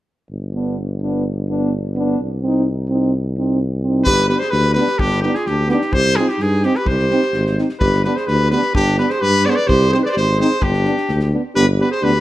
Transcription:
0.30 2.15 G1 medium
0.53 0.77 B3 soft
0.53 0.77 D4 soft
1.02 1.25 B3 medium
1.02 1.25 D4 soft
1.49 1.72 B3 soft
1.49 1.72 D4 medium
1.95 2.18 B3 medium
1.95 2.19 D4 medium
2.19 4.03 C2 medium
2.43 2.66 C4 medium
2.43 2.67 D#4 soft
2.89 3.12 C4 soft
2.89 3.13 D#4 soft
3.36 3.60 C4 soft
3.36 3.59 D#4 soft
3.83 4.06 C4 soft
3.83 4.07 D#4 soft
4.04 4.32 G1 medium
4.04 4.28 G4 medium
4.04 4.27 B4 loud
4.04 kick medium
4.19 snare soft
4.28 4.38 B3 soft
4.28 4.41 D4 medium
4.28 4.44 G4 medium
4.28 4.41 B4 medium
4.28 snare soft
4.39 4.54 G#4 medium
4.39 4.52 C5 medium
4.39 snare soft
4.50 4.79 D2 medium
4.50 4.75 G4 medium
4.50 4.74 B4 medium
4.50 snare soft
4.74 4.85 B3 medium
4.74 4.87 D4 medium
4.74 5.02 G4 medium
4.74 5.00 B4 medium
4.74 snare soft
4.87 snare soft
4.99 5.26 G1 medium
4.99 5.23 D4 medium
4.99 5.21 G4 medium
4.99 kick medium
5.11 snare soft
5.22 5.33 B3 medium
5.22 5.37 D#4 medium
5.22 5.37 G4 medium
5.26 5.35 D4 medium
5.35 5.51 F4 medium
5.35 5.48 G#4 medium
5.35 snare soft
5.46 5.72 D2 medium
5.46 5.70 D4 medium
5.46 5.71 G4 medium
5.46 snare soft
5.68 5.78 B3 medium
5.68 5.81 D4 medium
5.68 5.98 D#4 medium
5.68 5.95 G4 medium
5.68 snare soft
5.81 snare soft
5.92 6.19 C2 medium
5.92 6.21 G4 medium
5.92 6.18 C5 loud
5.92 kick medium
6.05 snare soft
6.16 6.27 C4 medium
6.16 6.27 D#4 medium
6.16 6.33 F4 medium
6.16 6.30 G#4 medium
6.16 snare soft
6.28 6.45 D#4 medium
6.28 6.43 G4 medium
6.28 snare soft
6.39 6.65 G2 medium
6.39 6.66 G#4 medium
6.39 snare soft
6.45 6.68 D#4 medium
6.63 6.74 C4 medium
6.63 6.74 D#4 medium
6.63 6.78 G4 medium
6.63 snare soft
6.68 6.80 D#4 medium
6.75 6.89 G4 medium
6.75 6.89 B4 medium
6.75 snare soft
6.86 7.12 C2 medium
6.86 7.59 G4 medium
6.86 7.58 C5 medium
6.86 kick medium
6.99 snare soft
7.10 7.20 C4 medium
7.10 7.21 D#4 medium
7.10 snare soft
7.22 snare soft
7.33 7.59 G#1 medium
7.33 snare soft
7.47 snare soft
7.58 7.67 C4 soft
7.58 7.67 D#4 soft
7.58 snare soft
7.69 snare soft
7.79 8.06 G1 medium
7.79 8.03 G4 medium
7.79 8.02 B4 medium
7.79 kick medium
7.93 snare soft
8.04 8.14 B3 medium
8.04 8.14 D4 medium
8.04 8.17 G4 medium
8.04 8.17 B4 medium
8.04 snare soft
8.15 8.31 G#4 medium
8.15 8.29 C5 medium
8.15 snare soft
8.27 8.54 D2 medium
8.27 8.52 G4 medium
8.27 8.51 B4 medium
8.27 snare soft
8.51 8.60 B3 medium
8.51 8.62 D4 medium
8.51 8.74 G4 medium
8.51 8.73 B4 medium
8.51 snare soft
8.62 snare soft
8.75 9.00 G1 medium
8.75 8.96 D4 medium
8.75 8.97 G4 medium
8.75 kick medium
8.87 snare soft
8.97 9.07 B3 medium
8.97 9.09 D4 medium
8.97 9.11 G4 medium
8.97 9.12 B4 medium
8.97 snare soft
9.09 9.21 G#4 medium
9.09 9.23 C5 medium
9.09 snare soft
9.19 9.47 G2 medium
9.19 9.46 G4 medium
9.19 9.47 B4 loud
9.19 snare soft
9.44 9.55 B3 medium
9.44 9.56 D4 medium
9.44 9.57 G#4 medium
9.44 9.49 B4 medium
9.44 9.51 D5 medium
9.44 snare soft
9.50 9.57 C5 medium
9.56 9.69 B4 medium
9.56 9.69 D5 medium
9.56 snare soft
9.67 9.94 C2 medium
9.67 9.89 G4 medium
9.67 9.91 C5 loud
9.67 kick medium
9.82 snare soft
9.90 10.02 C4 medium
9.90 9.96 G#4 medium
9.90 9.98 C5 medium
9.90 snare soft
9.94 10.03 D#4 medium
10.02 10.08 G#4 soft
10.02 10.06 B4 medium
10.02 10.12 B4 medium
10.02 10.09 D5 medium
10.02 snare soft
10.08 10.12 C5 medium
10.08 10.16 D5 medium
10.13 10.41 G#1 medium
10.13 10.35 G4 medium
10.17 10.38 C5 medium
10.17 snare soft
10.37 10.48 C4 medium
10.37 10.49 D#4 medium
10.37 10.62 G#4 medium
10.37 snare soft
10.41 10.64 C5 medium
10.51 snare soft
10.60 10.88 G1 medium
10.60 11.31 D4 medium
10.60 11.32 G4 medium
10.60 kick medium
10.73 snare soft
10.85 10.95 B3 soft
10.85 10.95 D4 medium
10.85 snare soft
10.97 snare soft
11.09 11.34 D2 medium
11.09 snare soft
11.20 snare soft
11.32 11.42 B3 soft
11.32 11.41 D4 medium
11.55 11.81 G1 loud
11.55 11.66 B3 medium
11.55 11.64 D4 medium
11.55 11.66 G4 medium
11.55 11.66 B4 medium
11.78 11.90 B3 medium
11.78 11.87 D4 soft
11.78 11.89 G4 medium
11.78 11.90 B4 medium
11.91 12.02 G#4 medium
11.91 12.05 C5 medium
12.00 12.20 D2 medium
12.00 12.12 B3 medium
12.00 12.11 D4 medium
12.00 12.20 G4 medium
12.00 12.20 B4 medium

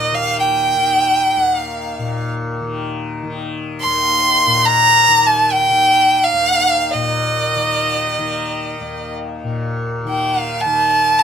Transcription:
0.00 1.36 D#2 medium
0.00 1.98 A#2 medium
0.00 0.12 D#3 medium
0.00 0.16 D#5 medium
0.12 0.74 D#3 medium
0.12 0.39 F5 medium
0.39 1.39 G5 medium
0.74 2.61 D#3 medium
1.37 3.85 D#2 medium
1.37 1.65 F#5 medium
1.65 2.31 F5 medium
1.99 4.46 A#2 medium
2.61 3.23 D#3 medium
3.23 5.08 D#3 medium
3.81 4.67 C6 medium
3.85 6.32 D#2 medium
4.46 6.94 A#2 medium
4.65 5.28 A#5 loud
5.08 5.70 D#3 medium
5.26 5.53 A5 medium
5.52 6.25 G5 medium
5.70 7.56 D#3 medium
6.24 6.93 F5 medium
6.33 8.80 D#2 medium
6.91 9.43 A#2 medium
6.91 9.13 D#5 medium
7.56 8.19 D#3 medium
8.19 10.04 D#3 medium
8.81 11.23 D#2 medium
9.44 11.23 A#2 soft
10.04 10.66 D#3 medium
10.09 10.41 G5 medium
10.41 10.62 F5 medium
10.61 11.20 A5 medium
10.66 11.23 D#3 medium
11.19 11.23 C6 medium

